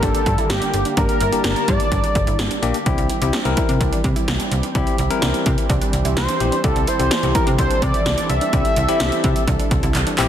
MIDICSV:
0, 0, Header, 1, 7, 480
1, 0, Start_track
1, 0, Tempo, 472441
1, 988, Time_signature, 4, 2, 24, 8
1, 10448, End_track
2, 0, Start_track
2, 0, Title_t, "Analog synth lead"
2, 0, Program_c, 0, 81
2, 30, Note_on_c, 0, 69, 102
2, 504, Note_off_c, 0, 69, 0
2, 510, Note_on_c, 0, 67, 90
2, 955, Note_off_c, 0, 67, 0
2, 991, Note_on_c, 0, 70, 104
2, 1436, Note_off_c, 0, 70, 0
2, 1469, Note_on_c, 0, 70, 92
2, 1710, Note_on_c, 0, 74, 105
2, 1725, Note_off_c, 0, 70, 0
2, 2669, Note_off_c, 0, 74, 0
2, 6269, Note_on_c, 0, 72, 92
2, 6715, Note_off_c, 0, 72, 0
2, 6748, Note_on_c, 0, 69, 97
2, 6989, Note_on_c, 0, 72, 102
2, 7004, Note_off_c, 0, 69, 0
2, 7462, Note_off_c, 0, 72, 0
2, 7468, Note_on_c, 0, 70, 90
2, 7576, Note_off_c, 0, 70, 0
2, 7709, Note_on_c, 0, 72, 106
2, 7949, Note_on_c, 0, 74, 110
2, 7965, Note_off_c, 0, 72, 0
2, 8421, Note_off_c, 0, 74, 0
2, 8427, Note_on_c, 0, 76, 127
2, 10067, Note_off_c, 0, 76, 0
2, 10448, End_track
3, 0, Start_track
3, 0, Title_t, "Tine electric piano"
3, 0, Program_c, 1, 4
3, 0, Note_on_c, 1, 58, 75
3, 0, Note_on_c, 1, 62, 67
3, 0, Note_on_c, 1, 67, 79
3, 215, Note_off_c, 1, 58, 0
3, 215, Note_off_c, 1, 62, 0
3, 215, Note_off_c, 1, 67, 0
3, 987, Note_on_c, 1, 58, 75
3, 987, Note_on_c, 1, 67, 81
3, 988, Note_on_c, 1, 62, 69
3, 1193, Note_off_c, 1, 58, 0
3, 1193, Note_off_c, 1, 62, 0
3, 1193, Note_off_c, 1, 67, 0
3, 1347, Note_on_c, 1, 62, 68
3, 1347, Note_on_c, 1, 67, 83
3, 1348, Note_on_c, 1, 58, 70
3, 1895, Note_off_c, 1, 62, 0
3, 1895, Note_off_c, 1, 67, 0
3, 1896, Note_off_c, 1, 58, 0
3, 2667, Note_on_c, 1, 67, 97
3, 2668, Note_on_c, 1, 58, 93
3, 2668, Note_on_c, 1, 62, 80
3, 2805, Note_off_c, 1, 58, 0
3, 2805, Note_off_c, 1, 62, 0
3, 2805, Note_off_c, 1, 67, 0
3, 2909, Note_on_c, 1, 60, 89
3, 2909, Note_on_c, 1, 64, 82
3, 2909, Note_on_c, 1, 67, 96
3, 3114, Note_off_c, 1, 60, 0
3, 3114, Note_off_c, 1, 64, 0
3, 3114, Note_off_c, 1, 67, 0
3, 3269, Note_on_c, 1, 60, 86
3, 3269, Note_on_c, 1, 64, 79
3, 3269, Note_on_c, 1, 67, 96
3, 3405, Note_off_c, 1, 60, 0
3, 3405, Note_off_c, 1, 64, 0
3, 3405, Note_off_c, 1, 67, 0
3, 3508, Note_on_c, 1, 64, 78
3, 3509, Note_on_c, 1, 60, 86
3, 3509, Note_on_c, 1, 70, 99
3, 4056, Note_off_c, 1, 60, 0
3, 4056, Note_off_c, 1, 64, 0
3, 4056, Note_off_c, 1, 70, 0
3, 4827, Note_on_c, 1, 60, 90
3, 4827, Note_on_c, 1, 64, 83
3, 4828, Note_on_c, 1, 67, 103
3, 5033, Note_off_c, 1, 60, 0
3, 5033, Note_off_c, 1, 64, 0
3, 5033, Note_off_c, 1, 67, 0
3, 5186, Note_on_c, 1, 64, 81
3, 5187, Note_on_c, 1, 60, 86
3, 5187, Note_on_c, 1, 70, 99
3, 5735, Note_off_c, 1, 60, 0
3, 5735, Note_off_c, 1, 64, 0
3, 5735, Note_off_c, 1, 70, 0
3, 6506, Note_on_c, 1, 64, 71
3, 6507, Note_on_c, 1, 60, 76
3, 6507, Note_on_c, 1, 67, 83
3, 6644, Note_off_c, 1, 60, 0
3, 6644, Note_off_c, 1, 64, 0
3, 6644, Note_off_c, 1, 67, 0
3, 6747, Note_on_c, 1, 60, 73
3, 6747, Note_on_c, 1, 64, 70
3, 6747, Note_on_c, 1, 67, 84
3, 6953, Note_off_c, 1, 60, 0
3, 6953, Note_off_c, 1, 64, 0
3, 6953, Note_off_c, 1, 67, 0
3, 7107, Note_on_c, 1, 64, 67
3, 7108, Note_on_c, 1, 60, 75
3, 7108, Note_on_c, 1, 67, 81
3, 7244, Note_off_c, 1, 64, 0
3, 7245, Note_off_c, 1, 60, 0
3, 7245, Note_off_c, 1, 67, 0
3, 7347, Note_on_c, 1, 60, 75
3, 7347, Note_on_c, 1, 64, 66
3, 7347, Note_on_c, 1, 67, 81
3, 7895, Note_off_c, 1, 67, 0
3, 7896, Note_off_c, 1, 60, 0
3, 7896, Note_off_c, 1, 64, 0
3, 8666, Note_on_c, 1, 60, 77
3, 8666, Note_on_c, 1, 64, 72
3, 8666, Note_on_c, 1, 67, 83
3, 8872, Note_off_c, 1, 60, 0
3, 8872, Note_off_c, 1, 64, 0
3, 8872, Note_off_c, 1, 67, 0
3, 9027, Note_on_c, 1, 60, 93
3, 9027, Note_on_c, 1, 64, 82
3, 9027, Note_on_c, 1, 67, 101
3, 9575, Note_off_c, 1, 64, 0
3, 9575, Note_off_c, 1, 67, 0
3, 9576, Note_off_c, 1, 60, 0
3, 10347, Note_on_c, 1, 60, 93
3, 10347, Note_on_c, 1, 64, 85
3, 10348, Note_on_c, 1, 67, 104
3, 10448, Note_off_c, 1, 60, 0
3, 10448, Note_off_c, 1, 64, 0
3, 10448, Note_off_c, 1, 67, 0
3, 10448, End_track
4, 0, Start_track
4, 0, Title_t, "Synth pluck"
4, 0, Program_c, 2, 84
4, 28, Note_on_c, 2, 62, 83
4, 91, Note_off_c, 2, 62, 0
4, 148, Note_on_c, 2, 62, 75
4, 273, Note_off_c, 2, 62, 0
4, 389, Note_on_c, 2, 64, 77
4, 513, Note_off_c, 2, 64, 0
4, 629, Note_on_c, 2, 62, 75
4, 754, Note_off_c, 2, 62, 0
4, 868, Note_on_c, 2, 62, 78
4, 931, Note_off_c, 2, 62, 0
4, 989, Note_on_c, 2, 62, 95
4, 1114, Note_off_c, 2, 62, 0
4, 1228, Note_on_c, 2, 64, 80
4, 1353, Note_off_c, 2, 64, 0
4, 1468, Note_on_c, 2, 62, 85
4, 1593, Note_off_c, 2, 62, 0
4, 1708, Note_on_c, 2, 64, 78
4, 1833, Note_off_c, 2, 64, 0
4, 1948, Note_on_c, 2, 62, 84
4, 2011, Note_off_c, 2, 62, 0
4, 2068, Note_on_c, 2, 62, 74
4, 2193, Note_off_c, 2, 62, 0
4, 2308, Note_on_c, 2, 64, 76
4, 2433, Note_off_c, 2, 64, 0
4, 2549, Note_on_c, 2, 62, 74
4, 2674, Note_off_c, 2, 62, 0
4, 2789, Note_on_c, 2, 62, 80
4, 2851, Note_off_c, 2, 62, 0
4, 2909, Note_on_c, 2, 62, 93
4, 3034, Note_off_c, 2, 62, 0
4, 3149, Note_on_c, 2, 64, 78
4, 3274, Note_off_c, 2, 64, 0
4, 3388, Note_on_c, 2, 62, 88
4, 3513, Note_off_c, 2, 62, 0
4, 3628, Note_on_c, 2, 64, 79
4, 3753, Note_off_c, 2, 64, 0
4, 3867, Note_on_c, 2, 62, 86
4, 3930, Note_off_c, 2, 62, 0
4, 3987, Note_on_c, 2, 62, 75
4, 4113, Note_off_c, 2, 62, 0
4, 4227, Note_on_c, 2, 64, 75
4, 4352, Note_off_c, 2, 64, 0
4, 4467, Note_on_c, 2, 62, 73
4, 4592, Note_off_c, 2, 62, 0
4, 4707, Note_on_c, 2, 62, 79
4, 4770, Note_off_c, 2, 62, 0
4, 4827, Note_on_c, 2, 62, 94
4, 4952, Note_off_c, 2, 62, 0
4, 5068, Note_on_c, 2, 64, 79
4, 5193, Note_off_c, 2, 64, 0
4, 5307, Note_on_c, 2, 62, 87
4, 5433, Note_off_c, 2, 62, 0
4, 5547, Note_on_c, 2, 64, 80
4, 5673, Note_off_c, 2, 64, 0
4, 5787, Note_on_c, 2, 62, 86
4, 5850, Note_off_c, 2, 62, 0
4, 5907, Note_on_c, 2, 62, 77
4, 6032, Note_off_c, 2, 62, 0
4, 6148, Note_on_c, 2, 64, 78
4, 6273, Note_off_c, 2, 64, 0
4, 6387, Note_on_c, 2, 62, 75
4, 6512, Note_off_c, 2, 62, 0
4, 6627, Note_on_c, 2, 62, 76
4, 6690, Note_off_c, 2, 62, 0
4, 6747, Note_on_c, 2, 62, 98
4, 6872, Note_off_c, 2, 62, 0
4, 6987, Note_on_c, 2, 64, 79
4, 7112, Note_off_c, 2, 64, 0
4, 7226, Note_on_c, 2, 62, 88
4, 7352, Note_off_c, 2, 62, 0
4, 7466, Note_on_c, 2, 64, 81
4, 7592, Note_off_c, 2, 64, 0
4, 7707, Note_on_c, 2, 62, 88
4, 7770, Note_off_c, 2, 62, 0
4, 7827, Note_on_c, 2, 62, 77
4, 7952, Note_off_c, 2, 62, 0
4, 8068, Note_on_c, 2, 64, 76
4, 8193, Note_off_c, 2, 64, 0
4, 8307, Note_on_c, 2, 62, 77
4, 8432, Note_off_c, 2, 62, 0
4, 8548, Note_on_c, 2, 62, 82
4, 8610, Note_off_c, 2, 62, 0
4, 8667, Note_on_c, 2, 62, 100
4, 8793, Note_off_c, 2, 62, 0
4, 8908, Note_on_c, 2, 64, 80
4, 9033, Note_off_c, 2, 64, 0
4, 9147, Note_on_c, 2, 62, 91
4, 9273, Note_off_c, 2, 62, 0
4, 9388, Note_on_c, 2, 64, 80
4, 9513, Note_off_c, 2, 64, 0
4, 9628, Note_on_c, 2, 62, 90
4, 9691, Note_off_c, 2, 62, 0
4, 9748, Note_on_c, 2, 62, 79
4, 9873, Note_off_c, 2, 62, 0
4, 9989, Note_on_c, 2, 64, 80
4, 10114, Note_off_c, 2, 64, 0
4, 10228, Note_on_c, 2, 62, 74
4, 10353, Note_off_c, 2, 62, 0
4, 10448, End_track
5, 0, Start_track
5, 0, Title_t, "Analog synth pad"
5, 0, Program_c, 3, 89
5, 0, Note_on_c, 3, 50, 81
5, 0, Note_on_c, 3, 55, 74
5, 0, Note_on_c, 3, 58, 74
5, 0, Note_on_c, 3, 67, 88
5, 968, Note_off_c, 3, 67, 0
5, 988, Note_on_c, 3, 81, 88
5, 2867, Note_off_c, 3, 50, 0
5, 2869, Note_off_c, 3, 58, 0
5, 2889, Note_off_c, 3, 81, 0
5, 2907, Note_on_c, 3, 52, 80
5, 2908, Note_on_c, 3, 60, 75
5, 2908, Note_on_c, 3, 67, 88
5, 6709, Note_off_c, 3, 67, 0
5, 6748, Note_on_c, 3, 69, 91
5, 10448, Note_off_c, 3, 52, 0
5, 10448, Note_off_c, 3, 55, 0
5, 10448, Note_off_c, 3, 60, 0
5, 10448, Note_off_c, 3, 69, 0
5, 10448, End_track
6, 0, Start_track
6, 0, Title_t, "FM bass"
6, 0, Program_c, 4, 39
6, 27, Note_on_c, 4, 31, 98
6, 130, Note_off_c, 4, 31, 0
6, 267, Note_on_c, 4, 43, 94
6, 370, Note_off_c, 4, 43, 0
6, 507, Note_on_c, 4, 31, 109
6, 610, Note_off_c, 4, 31, 0
6, 747, Note_on_c, 4, 31, 102
6, 850, Note_off_c, 4, 31, 0
6, 987, Note_on_c, 4, 31, 108
6, 1090, Note_off_c, 4, 31, 0
6, 1228, Note_on_c, 4, 31, 104
6, 1330, Note_off_c, 4, 31, 0
6, 1469, Note_on_c, 4, 31, 98
6, 1571, Note_off_c, 4, 31, 0
6, 1709, Note_on_c, 4, 43, 115
6, 1811, Note_off_c, 4, 43, 0
6, 1947, Note_on_c, 4, 31, 107
6, 2050, Note_off_c, 4, 31, 0
6, 2188, Note_on_c, 4, 31, 97
6, 2290, Note_off_c, 4, 31, 0
6, 2307, Note_on_c, 4, 31, 94
6, 2410, Note_off_c, 4, 31, 0
6, 2428, Note_on_c, 4, 31, 102
6, 2530, Note_off_c, 4, 31, 0
6, 2667, Note_on_c, 4, 34, 85
6, 2770, Note_off_c, 4, 34, 0
6, 2908, Note_on_c, 4, 36, 106
6, 3010, Note_off_c, 4, 36, 0
6, 3027, Note_on_c, 4, 36, 97
6, 3130, Note_off_c, 4, 36, 0
6, 3267, Note_on_c, 4, 36, 106
6, 3370, Note_off_c, 4, 36, 0
6, 3507, Note_on_c, 4, 36, 101
6, 3610, Note_off_c, 4, 36, 0
6, 3748, Note_on_c, 4, 48, 92
6, 3850, Note_off_c, 4, 48, 0
6, 3867, Note_on_c, 4, 36, 102
6, 3970, Note_off_c, 4, 36, 0
6, 4107, Note_on_c, 4, 48, 98
6, 4210, Note_off_c, 4, 48, 0
6, 4348, Note_on_c, 4, 36, 109
6, 4450, Note_off_c, 4, 36, 0
6, 4588, Note_on_c, 4, 36, 107
6, 4690, Note_off_c, 4, 36, 0
6, 4827, Note_on_c, 4, 36, 106
6, 4930, Note_off_c, 4, 36, 0
6, 5068, Note_on_c, 4, 36, 99
6, 5170, Note_off_c, 4, 36, 0
6, 5307, Note_on_c, 4, 36, 107
6, 5410, Note_off_c, 4, 36, 0
6, 5549, Note_on_c, 4, 48, 106
6, 5651, Note_off_c, 4, 48, 0
6, 5787, Note_on_c, 4, 36, 113
6, 5890, Note_off_c, 4, 36, 0
6, 6027, Note_on_c, 4, 36, 95
6, 6130, Note_off_c, 4, 36, 0
6, 6146, Note_on_c, 4, 36, 90
6, 6249, Note_off_c, 4, 36, 0
6, 6266, Note_on_c, 4, 36, 109
6, 6369, Note_off_c, 4, 36, 0
6, 6507, Note_on_c, 4, 34, 87
6, 6610, Note_off_c, 4, 34, 0
6, 6747, Note_on_c, 4, 36, 113
6, 6850, Note_off_c, 4, 36, 0
6, 6867, Note_on_c, 4, 36, 99
6, 6970, Note_off_c, 4, 36, 0
6, 7107, Note_on_c, 4, 36, 95
6, 7210, Note_off_c, 4, 36, 0
6, 7346, Note_on_c, 4, 36, 105
6, 7449, Note_off_c, 4, 36, 0
6, 7587, Note_on_c, 4, 48, 102
6, 7690, Note_off_c, 4, 48, 0
6, 7706, Note_on_c, 4, 36, 108
6, 7810, Note_off_c, 4, 36, 0
6, 7947, Note_on_c, 4, 48, 105
6, 8050, Note_off_c, 4, 48, 0
6, 8186, Note_on_c, 4, 36, 104
6, 8289, Note_off_c, 4, 36, 0
6, 8427, Note_on_c, 4, 36, 100
6, 8530, Note_off_c, 4, 36, 0
6, 8667, Note_on_c, 4, 36, 106
6, 8770, Note_off_c, 4, 36, 0
6, 8906, Note_on_c, 4, 36, 106
6, 9010, Note_off_c, 4, 36, 0
6, 9147, Note_on_c, 4, 36, 97
6, 9250, Note_off_c, 4, 36, 0
6, 9389, Note_on_c, 4, 48, 101
6, 9491, Note_off_c, 4, 48, 0
6, 9627, Note_on_c, 4, 36, 113
6, 9730, Note_off_c, 4, 36, 0
6, 9868, Note_on_c, 4, 36, 94
6, 9970, Note_off_c, 4, 36, 0
6, 9988, Note_on_c, 4, 36, 97
6, 10091, Note_off_c, 4, 36, 0
6, 10108, Note_on_c, 4, 36, 101
6, 10211, Note_off_c, 4, 36, 0
6, 10350, Note_on_c, 4, 34, 91
6, 10448, Note_off_c, 4, 34, 0
6, 10448, End_track
7, 0, Start_track
7, 0, Title_t, "Drums"
7, 26, Note_on_c, 9, 36, 88
7, 27, Note_on_c, 9, 42, 84
7, 128, Note_off_c, 9, 36, 0
7, 129, Note_off_c, 9, 42, 0
7, 148, Note_on_c, 9, 42, 58
7, 250, Note_off_c, 9, 42, 0
7, 266, Note_on_c, 9, 42, 68
7, 267, Note_on_c, 9, 36, 90
7, 368, Note_off_c, 9, 42, 0
7, 369, Note_off_c, 9, 36, 0
7, 387, Note_on_c, 9, 42, 51
7, 489, Note_off_c, 9, 42, 0
7, 506, Note_on_c, 9, 38, 98
7, 507, Note_on_c, 9, 42, 69
7, 608, Note_off_c, 9, 38, 0
7, 609, Note_off_c, 9, 42, 0
7, 627, Note_on_c, 9, 42, 59
7, 729, Note_off_c, 9, 42, 0
7, 748, Note_on_c, 9, 42, 62
7, 849, Note_off_c, 9, 42, 0
7, 866, Note_on_c, 9, 42, 45
7, 968, Note_off_c, 9, 42, 0
7, 986, Note_on_c, 9, 42, 70
7, 987, Note_on_c, 9, 36, 103
7, 1088, Note_off_c, 9, 42, 0
7, 1089, Note_off_c, 9, 36, 0
7, 1107, Note_on_c, 9, 42, 54
7, 1208, Note_off_c, 9, 42, 0
7, 1224, Note_on_c, 9, 42, 75
7, 1326, Note_off_c, 9, 42, 0
7, 1346, Note_on_c, 9, 42, 62
7, 1448, Note_off_c, 9, 42, 0
7, 1463, Note_on_c, 9, 38, 115
7, 1466, Note_on_c, 9, 42, 78
7, 1565, Note_off_c, 9, 38, 0
7, 1567, Note_off_c, 9, 42, 0
7, 1587, Note_on_c, 9, 42, 49
7, 1689, Note_off_c, 9, 42, 0
7, 1707, Note_on_c, 9, 42, 71
7, 1710, Note_on_c, 9, 36, 91
7, 1808, Note_off_c, 9, 42, 0
7, 1811, Note_off_c, 9, 36, 0
7, 1828, Note_on_c, 9, 42, 55
7, 1929, Note_off_c, 9, 42, 0
7, 1947, Note_on_c, 9, 36, 91
7, 1948, Note_on_c, 9, 42, 83
7, 2049, Note_off_c, 9, 36, 0
7, 2049, Note_off_c, 9, 42, 0
7, 2069, Note_on_c, 9, 42, 60
7, 2171, Note_off_c, 9, 42, 0
7, 2187, Note_on_c, 9, 42, 68
7, 2188, Note_on_c, 9, 36, 93
7, 2289, Note_off_c, 9, 36, 0
7, 2289, Note_off_c, 9, 42, 0
7, 2309, Note_on_c, 9, 42, 49
7, 2410, Note_off_c, 9, 42, 0
7, 2428, Note_on_c, 9, 38, 102
7, 2428, Note_on_c, 9, 42, 68
7, 2529, Note_off_c, 9, 38, 0
7, 2530, Note_off_c, 9, 42, 0
7, 2548, Note_on_c, 9, 42, 59
7, 2650, Note_off_c, 9, 42, 0
7, 2669, Note_on_c, 9, 42, 62
7, 2771, Note_off_c, 9, 42, 0
7, 2787, Note_on_c, 9, 42, 46
7, 2889, Note_off_c, 9, 42, 0
7, 2907, Note_on_c, 9, 42, 72
7, 2908, Note_on_c, 9, 36, 106
7, 3009, Note_off_c, 9, 42, 0
7, 3010, Note_off_c, 9, 36, 0
7, 3028, Note_on_c, 9, 42, 56
7, 3129, Note_off_c, 9, 42, 0
7, 3144, Note_on_c, 9, 42, 75
7, 3246, Note_off_c, 9, 42, 0
7, 3268, Note_on_c, 9, 42, 61
7, 3369, Note_off_c, 9, 42, 0
7, 3384, Note_on_c, 9, 38, 115
7, 3387, Note_on_c, 9, 42, 78
7, 3486, Note_off_c, 9, 38, 0
7, 3488, Note_off_c, 9, 42, 0
7, 3507, Note_on_c, 9, 42, 52
7, 3609, Note_off_c, 9, 42, 0
7, 3627, Note_on_c, 9, 42, 71
7, 3629, Note_on_c, 9, 36, 86
7, 3729, Note_off_c, 9, 42, 0
7, 3731, Note_off_c, 9, 36, 0
7, 3748, Note_on_c, 9, 42, 54
7, 3850, Note_off_c, 9, 42, 0
7, 3867, Note_on_c, 9, 36, 89
7, 3868, Note_on_c, 9, 42, 81
7, 3968, Note_off_c, 9, 36, 0
7, 3969, Note_off_c, 9, 42, 0
7, 3989, Note_on_c, 9, 42, 59
7, 4090, Note_off_c, 9, 42, 0
7, 4106, Note_on_c, 9, 42, 66
7, 4107, Note_on_c, 9, 36, 90
7, 4208, Note_off_c, 9, 42, 0
7, 4209, Note_off_c, 9, 36, 0
7, 4228, Note_on_c, 9, 42, 50
7, 4329, Note_off_c, 9, 42, 0
7, 4347, Note_on_c, 9, 38, 98
7, 4348, Note_on_c, 9, 42, 65
7, 4449, Note_off_c, 9, 38, 0
7, 4450, Note_off_c, 9, 42, 0
7, 4468, Note_on_c, 9, 42, 60
7, 4569, Note_off_c, 9, 42, 0
7, 4587, Note_on_c, 9, 42, 61
7, 4689, Note_off_c, 9, 42, 0
7, 4707, Note_on_c, 9, 42, 46
7, 4808, Note_off_c, 9, 42, 0
7, 4826, Note_on_c, 9, 42, 73
7, 4827, Note_on_c, 9, 36, 106
7, 4928, Note_off_c, 9, 42, 0
7, 4929, Note_off_c, 9, 36, 0
7, 4947, Note_on_c, 9, 42, 57
7, 5049, Note_off_c, 9, 42, 0
7, 5064, Note_on_c, 9, 42, 75
7, 5165, Note_off_c, 9, 42, 0
7, 5187, Note_on_c, 9, 42, 62
7, 5289, Note_off_c, 9, 42, 0
7, 5304, Note_on_c, 9, 38, 117
7, 5307, Note_on_c, 9, 42, 78
7, 5406, Note_off_c, 9, 38, 0
7, 5408, Note_off_c, 9, 42, 0
7, 5427, Note_on_c, 9, 42, 52
7, 5529, Note_off_c, 9, 42, 0
7, 5547, Note_on_c, 9, 42, 73
7, 5549, Note_on_c, 9, 36, 87
7, 5648, Note_off_c, 9, 42, 0
7, 5651, Note_off_c, 9, 36, 0
7, 5668, Note_on_c, 9, 42, 55
7, 5770, Note_off_c, 9, 42, 0
7, 5786, Note_on_c, 9, 36, 93
7, 5788, Note_on_c, 9, 42, 83
7, 5888, Note_off_c, 9, 36, 0
7, 5890, Note_off_c, 9, 42, 0
7, 5908, Note_on_c, 9, 42, 60
7, 6010, Note_off_c, 9, 42, 0
7, 6026, Note_on_c, 9, 42, 68
7, 6128, Note_off_c, 9, 42, 0
7, 6147, Note_on_c, 9, 42, 52
7, 6249, Note_off_c, 9, 42, 0
7, 6266, Note_on_c, 9, 38, 105
7, 6267, Note_on_c, 9, 42, 71
7, 6368, Note_off_c, 9, 38, 0
7, 6368, Note_off_c, 9, 42, 0
7, 6386, Note_on_c, 9, 42, 61
7, 6488, Note_off_c, 9, 42, 0
7, 6507, Note_on_c, 9, 42, 59
7, 6608, Note_off_c, 9, 42, 0
7, 6627, Note_on_c, 9, 42, 46
7, 6728, Note_off_c, 9, 42, 0
7, 6746, Note_on_c, 9, 42, 74
7, 6747, Note_on_c, 9, 36, 104
7, 6847, Note_off_c, 9, 42, 0
7, 6849, Note_off_c, 9, 36, 0
7, 6867, Note_on_c, 9, 42, 55
7, 6969, Note_off_c, 9, 42, 0
7, 6985, Note_on_c, 9, 42, 79
7, 7086, Note_off_c, 9, 42, 0
7, 7107, Note_on_c, 9, 42, 61
7, 7209, Note_off_c, 9, 42, 0
7, 7224, Note_on_c, 9, 38, 118
7, 7226, Note_on_c, 9, 42, 76
7, 7325, Note_off_c, 9, 38, 0
7, 7328, Note_off_c, 9, 42, 0
7, 7347, Note_on_c, 9, 42, 51
7, 7449, Note_off_c, 9, 42, 0
7, 7467, Note_on_c, 9, 42, 73
7, 7469, Note_on_c, 9, 36, 88
7, 7569, Note_off_c, 9, 42, 0
7, 7571, Note_off_c, 9, 36, 0
7, 7588, Note_on_c, 9, 42, 54
7, 7690, Note_off_c, 9, 42, 0
7, 7706, Note_on_c, 9, 36, 91
7, 7708, Note_on_c, 9, 42, 87
7, 7808, Note_off_c, 9, 36, 0
7, 7810, Note_off_c, 9, 42, 0
7, 7829, Note_on_c, 9, 42, 61
7, 7930, Note_off_c, 9, 42, 0
7, 7947, Note_on_c, 9, 36, 90
7, 7947, Note_on_c, 9, 42, 68
7, 8048, Note_off_c, 9, 42, 0
7, 8049, Note_off_c, 9, 36, 0
7, 8068, Note_on_c, 9, 42, 51
7, 8170, Note_off_c, 9, 42, 0
7, 8188, Note_on_c, 9, 38, 104
7, 8188, Note_on_c, 9, 42, 66
7, 8289, Note_off_c, 9, 38, 0
7, 8290, Note_off_c, 9, 42, 0
7, 8308, Note_on_c, 9, 42, 62
7, 8410, Note_off_c, 9, 42, 0
7, 8428, Note_on_c, 9, 42, 61
7, 8530, Note_off_c, 9, 42, 0
7, 8548, Note_on_c, 9, 42, 47
7, 8649, Note_off_c, 9, 42, 0
7, 8667, Note_on_c, 9, 36, 108
7, 8667, Note_on_c, 9, 42, 73
7, 8769, Note_off_c, 9, 36, 0
7, 8769, Note_off_c, 9, 42, 0
7, 8788, Note_on_c, 9, 42, 55
7, 8889, Note_off_c, 9, 42, 0
7, 8905, Note_on_c, 9, 42, 78
7, 9006, Note_off_c, 9, 42, 0
7, 9028, Note_on_c, 9, 42, 62
7, 9129, Note_off_c, 9, 42, 0
7, 9144, Note_on_c, 9, 38, 117
7, 9146, Note_on_c, 9, 42, 75
7, 9245, Note_off_c, 9, 38, 0
7, 9248, Note_off_c, 9, 42, 0
7, 9267, Note_on_c, 9, 42, 51
7, 9369, Note_off_c, 9, 42, 0
7, 9386, Note_on_c, 9, 42, 70
7, 9389, Note_on_c, 9, 36, 89
7, 9488, Note_off_c, 9, 42, 0
7, 9491, Note_off_c, 9, 36, 0
7, 9508, Note_on_c, 9, 42, 55
7, 9610, Note_off_c, 9, 42, 0
7, 9627, Note_on_c, 9, 36, 91
7, 9627, Note_on_c, 9, 42, 85
7, 9729, Note_off_c, 9, 36, 0
7, 9729, Note_off_c, 9, 42, 0
7, 9749, Note_on_c, 9, 42, 59
7, 9850, Note_off_c, 9, 42, 0
7, 9866, Note_on_c, 9, 42, 70
7, 9867, Note_on_c, 9, 36, 95
7, 9968, Note_off_c, 9, 42, 0
7, 9969, Note_off_c, 9, 36, 0
7, 9987, Note_on_c, 9, 42, 50
7, 10089, Note_off_c, 9, 42, 0
7, 10107, Note_on_c, 9, 39, 54
7, 10108, Note_on_c, 9, 42, 70
7, 10209, Note_off_c, 9, 39, 0
7, 10209, Note_off_c, 9, 42, 0
7, 10228, Note_on_c, 9, 42, 59
7, 10329, Note_off_c, 9, 42, 0
7, 10347, Note_on_c, 9, 39, 92
7, 10348, Note_on_c, 9, 42, 62
7, 10448, Note_off_c, 9, 39, 0
7, 10448, Note_off_c, 9, 42, 0
7, 10448, End_track
0, 0, End_of_file